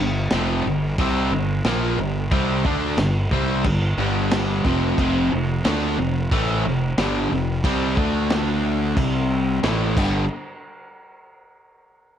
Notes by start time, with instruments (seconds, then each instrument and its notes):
Already playing: fingered electric bass G1
0.00 overdriven electric guitar G2 D3
0.30 fingered electric bass F1, overdriven electric guitar F2 C3 F3, snare, crash
0.66 fingered electric bass G1, overdriven electric guitar G2 D3
0.98 fingered electric bass C2, overdriven electric guitar C3 G3 C4, kick, crash
1.30 fingered electric bass G1, overdriven electric guitar G2 D3
1.64 fingered electric bass A#1, overdriven electric guitar A#2 F3 A#3, snare, crash
1.97 fingered electric bass G1, overdriven electric guitar G2 D3
2.31 fingered electric bass C2, overdriven electric guitar C3 G3 C4, kick, crash
2.65 fingered electric bass D2, overdriven electric guitar D3 A3 D4, kick
2.97 fingered electric bass G1, overdriven electric guitar G2 D3, snare, crash
3.31 fingered electric bass C2, overdriven electric guitar C3 G3 C4, kick
3.64 fingered electric bass G1, overdriven electric guitar G2 D3, kick, crash
3.97 fingered electric bass G1, overdriven electric guitar G2 D3 G3
4.31 snare, crash
4.65 fingered electric bass F1, overdriven electric guitar F2 C3 F3, kick
4.98 fingered electric bass F1, overdriven electric guitar F2 C3 F3, kick, crash
5.33 fingered electric bass F1, overdriven electric guitar F2 C3
5.65 fingered electric bass D2, overdriven electric guitar D3 A3 D4, snare, crash
5.98 fingered electric bass F1, overdriven electric guitar F2 C3
6.31 fingered electric bass A1, overdriven electric guitar A2 E3 A3, kick, crash
6.66 fingered electric bass F1, overdriven electric guitar F2 C3
6.98 fingered electric bass G1, overdriven electric guitar G2 D3 G3, snare, crash
7.32 fingered electric bass F1, overdriven electric guitar F2 C3
7.64 fingered electric bass C2, overdriven electric guitar C3 G3 C4, kick, crash
7.97 fingered electric bass D2, overdriven electric guitar D3 A3 D4, kick
8.30 snare, crash
8.97 fingered electric bass C2, overdriven electric guitar C3 G3 C4, kick, crash
9.63 fingered electric bass A1, overdriven electric guitar A2 E3 A3, snare, crash
9.97 fingered electric bass G1, overdriven electric guitar G2 D3 G3, kick, crash